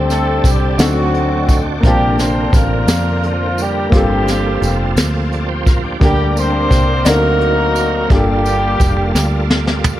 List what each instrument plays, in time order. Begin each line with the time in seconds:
Already playing: fingered electric bass D2, grand piano D3 C4 D4 G4 A4 C5, tonewheel organ G3 C4 D4 A4, horn section C4
0.09 horn section A3 A4, snare, closed hi-hat, tambourine
0.44 fingered electric bass C2, horn section G3 G4, kick, closed hi-hat, tambourine
0.77 fingered electric bass D2, grand piano D3 C4 D4 D#4 F#4 A4, tonewheel organ D3 C4 F4 D5, horn section F#3 A3 C4 F#4, snare, closed hi-hat, tambourine
0.85 tonewheel organ F#4
1.14 closed hi-hat
1.48 kick, closed hi-hat, tambourine
1.80 fingered electric bass A#1, grand piano C3 A#3 C4 D4, tonewheel organ D3 A#3 C4 G4, kick, closed hi-hat
1.85 horn section G3 C4 D4 G4, grand piano F4 A5, tonewheel organ A#4
2.18 horn section C4 C5, snare, closed hi-hat, tambourine
2.53 fingered electric bass A1, horn section A#3 D4 F4 A#4, kick, closed hi-hat, tambourine
2.87 fingered electric bass F2, snare, closed hi-hat, tambourine
3.23 horn section F3 F4, closed hi-hat
3.57 horn section G3 G4, closed hi-hat, tambourine
3.89 fingered electric bass G1, grand piano G2 A#3 C4 F4, tonewheel organ F3 A#3 C4 G#4, kick, closed hi-hat
3.94 horn section G3 A#3 C4 G4, grand piano G4 A4, tonewheel organ A4
4.27 snare, closed hi-hat, tambourine
4.62 fingered electric bass F1, closed hi-hat, tambourine
4.96 fingered electric bass D2, snare, closed hi-hat, tambourine
5.32 tonewheel organ A4 D5, closed hi-hat
5.49 tonewheel organ G4 C5
5.66 tonewheel organ F4 A#4, kick, closed hi-hat, tambourine
5.83 tonewheel organ D4 G4
6.00 fingered electric bass D2, grand piano D3 G3 A#3 D4 G4 A#4, tonewheel organ G3 A#3 D4 A#4, horn section D4, kick, closed hi-hat
6.04 horn section G3 A#3 G4
6.36 horn section C4 G4 C5, closed hi-hat, tambourine
6.71 fingered electric bass C2, kick, closed hi-hat, tambourine
7.04 fingered electric bass D2, grand piano D3 C4 D#4 F#4 A#4 D5, tonewheel organ F#3 C4 D#4 A#4, horn section A#3 D#4 F#4 A#4, snare, closed hi-hat, tambourine
7.41 closed hi-hat
7.75 closed hi-hat, tambourine
8.08 fingered electric bass G1, grand piano G2 A#3 D4 F4, tonewheel organ G3 A#3 F4 A4, kick, closed hi-hat
8.12 horn section G3 A#3 D4 G4, grand piano G4 A4
8.45 closed hi-hat, tambourine
8.79 fingered electric bass F1, kick, closed hi-hat, tambourine
9.15 fingered electric bass D2, snare, tambourine
9.50 snare
9.67 snare
9.84 floor tom, tambourine